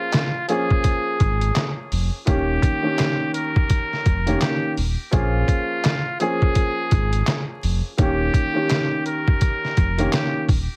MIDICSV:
0, 0, Header, 1, 5, 480
1, 0, Start_track
1, 0, Tempo, 714286
1, 1527, Time_signature, 4, 2, 24, 8
1, 7233, End_track
2, 0, Start_track
2, 0, Title_t, "Muted trumpet"
2, 0, Program_c, 0, 59
2, 0, Note_on_c, 0, 65, 93
2, 299, Note_off_c, 0, 65, 0
2, 329, Note_on_c, 0, 68, 91
2, 1166, Note_off_c, 0, 68, 0
2, 1529, Note_on_c, 0, 67, 95
2, 2221, Note_off_c, 0, 67, 0
2, 2245, Note_on_c, 0, 70, 86
2, 2939, Note_off_c, 0, 70, 0
2, 2963, Note_on_c, 0, 67, 81
2, 3181, Note_off_c, 0, 67, 0
2, 3451, Note_on_c, 0, 65, 95
2, 4142, Note_off_c, 0, 65, 0
2, 4169, Note_on_c, 0, 68, 97
2, 5006, Note_off_c, 0, 68, 0
2, 5377, Note_on_c, 0, 67, 105
2, 6065, Note_off_c, 0, 67, 0
2, 6089, Note_on_c, 0, 70, 86
2, 6781, Note_off_c, 0, 70, 0
2, 6808, Note_on_c, 0, 67, 82
2, 7024, Note_off_c, 0, 67, 0
2, 7233, End_track
3, 0, Start_track
3, 0, Title_t, "Grand piano"
3, 0, Program_c, 1, 0
3, 0, Note_on_c, 1, 53, 87
3, 0, Note_on_c, 1, 58, 79
3, 0, Note_on_c, 1, 61, 86
3, 0, Note_on_c, 1, 68, 95
3, 170, Note_off_c, 1, 53, 0
3, 172, Note_off_c, 1, 58, 0
3, 176, Note_off_c, 1, 61, 0
3, 178, Note_off_c, 1, 68, 0
3, 323, Note_on_c, 1, 53, 91
3, 329, Note_on_c, 1, 58, 79
3, 335, Note_on_c, 1, 61, 84
3, 341, Note_on_c, 1, 68, 99
3, 1449, Note_off_c, 1, 53, 0
3, 1452, Note_off_c, 1, 58, 0
3, 1455, Note_off_c, 1, 61, 0
3, 1458, Note_off_c, 1, 68, 0
3, 1518, Note_on_c, 1, 51, 90
3, 1523, Note_on_c, 1, 58, 83
3, 1530, Note_on_c, 1, 61, 86
3, 1536, Note_on_c, 1, 67, 101
3, 1873, Note_off_c, 1, 51, 0
3, 1876, Note_off_c, 1, 58, 0
3, 1879, Note_off_c, 1, 61, 0
3, 1882, Note_off_c, 1, 67, 0
3, 1897, Note_on_c, 1, 51, 93
3, 1903, Note_on_c, 1, 58, 76
3, 1909, Note_on_c, 1, 61, 79
3, 1915, Note_on_c, 1, 67, 97
3, 2772, Note_off_c, 1, 51, 0
3, 2775, Note_off_c, 1, 58, 0
3, 2778, Note_off_c, 1, 61, 0
3, 2781, Note_off_c, 1, 67, 0
3, 2865, Note_on_c, 1, 51, 92
3, 2871, Note_on_c, 1, 58, 84
3, 2877, Note_on_c, 1, 61, 84
3, 2883, Note_on_c, 1, 67, 95
3, 3181, Note_off_c, 1, 51, 0
3, 3184, Note_off_c, 1, 58, 0
3, 3187, Note_off_c, 1, 61, 0
3, 3190, Note_off_c, 1, 67, 0
3, 3437, Note_on_c, 1, 53, 91
3, 3443, Note_on_c, 1, 58, 81
3, 3449, Note_on_c, 1, 61, 86
3, 3455, Note_on_c, 1, 68, 95
3, 4009, Note_off_c, 1, 53, 0
3, 4012, Note_off_c, 1, 58, 0
3, 4015, Note_off_c, 1, 61, 0
3, 4018, Note_off_c, 1, 68, 0
3, 4164, Note_on_c, 1, 53, 91
3, 4170, Note_on_c, 1, 58, 84
3, 4176, Note_on_c, 1, 61, 81
3, 4182, Note_on_c, 1, 68, 101
3, 5290, Note_off_c, 1, 53, 0
3, 5293, Note_off_c, 1, 58, 0
3, 5296, Note_off_c, 1, 61, 0
3, 5299, Note_off_c, 1, 68, 0
3, 5359, Note_on_c, 1, 51, 89
3, 5364, Note_on_c, 1, 58, 82
3, 5371, Note_on_c, 1, 61, 87
3, 5377, Note_on_c, 1, 67, 101
3, 5713, Note_off_c, 1, 51, 0
3, 5716, Note_off_c, 1, 58, 0
3, 5719, Note_off_c, 1, 61, 0
3, 5722, Note_off_c, 1, 67, 0
3, 5737, Note_on_c, 1, 51, 94
3, 5744, Note_on_c, 1, 58, 76
3, 5750, Note_on_c, 1, 61, 78
3, 5755, Note_on_c, 1, 67, 97
3, 6612, Note_off_c, 1, 51, 0
3, 6615, Note_off_c, 1, 58, 0
3, 6618, Note_off_c, 1, 61, 0
3, 6621, Note_off_c, 1, 67, 0
3, 6706, Note_on_c, 1, 51, 90
3, 6712, Note_on_c, 1, 58, 85
3, 6717, Note_on_c, 1, 61, 85
3, 6723, Note_on_c, 1, 67, 93
3, 7021, Note_off_c, 1, 51, 0
3, 7024, Note_off_c, 1, 58, 0
3, 7027, Note_off_c, 1, 61, 0
3, 7030, Note_off_c, 1, 67, 0
3, 7233, End_track
4, 0, Start_track
4, 0, Title_t, "Sub bass"
4, 0, Program_c, 2, 38
4, 808, Note_on_c, 2, 32, 89
4, 1012, Note_off_c, 2, 32, 0
4, 1288, Note_on_c, 2, 29, 96
4, 1412, Note_off_c, 2, 29, 0
4, 1527, Note_on_c, 2, 27, 111
4, 1732, Note_off_c, 2, 27, 0
4, 2727, Note_on_c, 2, 29, 91
4, 2932, Note_off_c, 2, 29, 0
4, 3208, Note_on_c, 2, 27, 93
4, 3331, Note_off_c, 2, 27, 0
4, 3447, Note_on_c, 2, 34, 101
4, 3652, Note_off_c, 2, 34, 0
4, 4648, Note_on_c, 2, 32, 89
4, 4852, Note_off_c, 2, 32, 0
4, 5128, Note_on_c, 2, 29, 98
4, 5251, Note_off_c, 2, 29, 0
4, 5367, Note_on_c, 2, 27, 111
4, 5572, Note_off_c, 2, 27, 0
4, 6568, Note_on_c, 2, 29, 91
4, 6772, Note_off_c, 2, 29, 0
4, 7047, Note_on_c, 2, 27, 93
4, 7171, Note_off_c, 2, 27, 0
4, 7233, End_track
5, 0, Start_track
5, 0, Title_t, "Drums"
5, 83, Note_on_c, 9, 42, 89
5, 91, Note_on_c, 9, 39, 87
5, 95, Note_on_c, 9, 38, 112
5, 151, Note_off_c, 9, 42, 0
5, 158, Note_off_c, 9, 39, 0
5, 162, Note_off_c, 9, 38, 0
5, 327, Note_on_c, 9, 42, 65
5, 394, Note_off_c, 9, 42, 0
5, 474, Note_on_c, 9, 36, 94
5, 541, Note_off_c, 9, 36, 0
5, 564, Note_on_c, 9, 42, 98
5, 566, Note_on_c, 9, 36, 99
5, 631, Note_off_c, 9, 42, 0
5, 633, Note_off_c, 9, 36, 0
5, 807, Note_on_c, 9, 42, 74
5, 808, Note_on_c, 9, 36, 86
5, 874, Note_off_c, 9, 42, 0
5, 875, Note_off_c, 9, 36, 0
5, 950, Note_on_c, 9, 42, 61
5, 1017, Note_off_c, 9, 42, 0
5, 1045, Note_on_c, 9, 42, 90
5, 1047, Note_on_c, 9, 39, 88
5, 1051, Note_on_c, 9, 38, 106
5, 1112, Note_off_c, 9, 42, 0
5, 1114, Note_off_c, 9, 39, 0
5, 1118, Note_off_c, 9, 38, 0
5, 1290, Note_on_c, 9, 46, 54
5, 1357, Note_off_c, 9, 46, 0
5, 1525, Note_on_c, 9, 42, 83
5, 1527, Note_on_c, 9, 36, 109
5, 1592, Note_off_c, 9, 42, 0
5, 1594, Note_off_c, 9, 36, 0
5, 1763, Note_on_c, 9, 36, 82
5, 1767, Note_on_c, 9, 42, 79
5, 1830, Note_off_c, 9, 36, 0
5, 1834, Note_off_c, 9, 42, 0
5, 2003, Note_on_c, 9, 42, 87
5, 2010, Note_on_c, 9, 39, 86
5, 2014, Note_on_c, 9, 38, 112
5, 2070, Note_off_c, 9, 42, 0
5, 2077, Note_off_c, 9, 39, 0
5, 2081, Note_off_c, 9, 38, 0
5, 2246, Note_on_c, 9, 42, 66
5, 2314, Note_off_c, 9, 42, 0
5, 2393, Note_on_c, 9, 36, 95
5, 2460, Note_off_c, 9, 36, 0
5, 2484, Note_on_c, 9, 42, 96
5, 2486, Note_on_c, 9, 36, 97
5, 2551, Note_off_c, 9, 42, 0
5, 2553, Note_off_c, 9, 36, 0
5, 2642, Note_on_c, 9, 38, 35
5, 2709, Note_off_c, 9, 38, 0
5, 2726, Note_on_c, 9, 42, 72
5, 2727, Note_on_c, 9, 36, 90
5, 2793, Note_off_c, 9, 42, 0
5, 2795, Note_off_c, 9, 36, 0
5, 2869, Note_on_c, 9, 42, 63
5, 2937, Note_off_c, 9, 42, 0
5, 2965, Note_on_c, 9, 42, 91
5, 2966, Note_on_c, 9, 39, 86
5, 2970, Note_on_c, 9, 38, 108
5, 3032, Note_off_c, 9, 42, 0
5, 3033, Note_off_c, 9, 39, 0
5, 3037, Note_off_c, 9, 38, 0
5, 3208, Note_on_c, 9, 46, 54
5, 3276, Note_off_c, 9, 46, 0
5, 3445, Note_on_c, 9, 42, 81
5, 3447, Note_on_c, 9, 36, 114
5, 3512, Note_off_c, 9, 42, 0
5, 3514, Note_off_c, 9, 36, 0
5, 3683, Note_on_c, 9, 36, 86
5, 3687, Note_on_c, 9, 42, 79
5, 3750, Note_off_c, 9, 36, 0
5, 3754, Note_off_c, 9, 42, 0
5, 3923, Note_on_c, 9, 42, 87
5, 3930, Note_on_c, 9, 39, 89
5, 3934, Note_on_c, 9, 38, 110
5, 3990, Note_off_c, 9, 42, 0
5, 3997, Note_off_c, 9, 39, 0
5, 4001, Note_off_c, 9, 38, 0
5, 4167, Note_on_c, 9, 42, 65
5, 4234, Note_off_c, 9, 42, 0
5, 4313, Note_on_c, 9, 36, 93
5, 4381, Note_off_c, 9, 36, 0
5, 4404, Note_on_c, 9, 42, 96
5, 4406, Note_on_c, 9, 36, 96
5, 4471, Note_off_c, 9, 42, 0
5, 4473, Note_off_c, 9, 36, 0
5, 4645, Note_on_c, 9, 42, 74
5, 4647, Note_on_c, 9, 36, 90
5, 4713, Note_off_c, 9, 42, 0
5, 4715, Note_off_c, 9, 36, 0
5, 4790, Note_on_c, 9, 42, 63
5, 4857, Note_off_c, 9, 42, 0
5, 4884, Note_on_c, 9, 42, 88
5, 4886, Note_on_c, 9, 39, 85
5, 4890, Note_on_c, 9, 38, 108
5, 4952, Note_off_c, 9, 42, 0
5, 4953, Note_off_c, 9, 39, 0
5, 4957, Note_off_c, 9, 38, 0
5, 5129, Note_on_c, 9, 46, 55
5, 5196, Note_off_c, 9, 46, 0
5, 5365, Note_on_c, 9, 42, 82
5, 5367, Note_on_c, 9, 36, 115
5, 5432, Note_off_c, 9, 42, 0
5, 5434, Note_off_c, 9, 36, 0
5, 5603, Note_on_c, 9, 36, 81
5, 5607, Note_on_c, 9, 42, 81
5, 5670, Note_off_c, 9, 36, 0
5, 5674, Note_off_c, 9, 42, 0
5, 5843, Note_on_c, 9, 42, 90
5, 5851, Note_on_c, 9, 39, 88
5, 5855, Note_on_c, 9, 38, 113
5, 5910, Note_off_c, 9, 42, 0
5, 5918, Note_off_c, 9, 39, 0
5, 5922, Note_off_c, 9, 38, 0
5, 6087, Note_on_c, 9, 42, 63
5, 6154, Note_off_c, 9, 42, 0
5, 6234, Note_on_c, 9, 36, 92
5, 6301, Note_off_c, 9, 36, 0
5, 6323, Note_on_c, 9, 42, 95
5, 6326, Note_on_c, 9, 36, 95
5, 6391, Note_off_c, 9, 42, 0
5, 6393, Note_off_c, 9, 36, 0
5, 6482, Note_on_c, 9, 38, 33
5, 6549, Note_off_c, 9, 38, 0
5, 6565, Note_on_c, 9, 42, 71
5, 6568, Note_on_c, 9, 36, 85
5, 6632, Note_off_c, 9, 42, 0
5, 6635, Note_off_c, 9, 36, 0
5, 6710, Note_on_c, 9, 42, 62
5, 6777, Note_off_c, 9, 42, 0
5, 6805, Note_on_c, 9, 42, 93
5, 6806, Note_on_c, 9, 39, 86
5, 6810, Note_on_c, 9, 38, 106
5, 6872, Note_off_c, 9, 42, 0
5, 6874, Note_off_c, 9, 39, 0
5, 6878, Note_off_c, 9, 38, 0
5, 7047, Note_on_c, 9, 36, 98
5, 7049, Note_on_c, 9, 46, 55
5, 7114, Note_off_c, 9, 36, 0
5, 7117, Note_off_c, 9, 46, 0
5, 7233, End_track
0, 0, End_of_file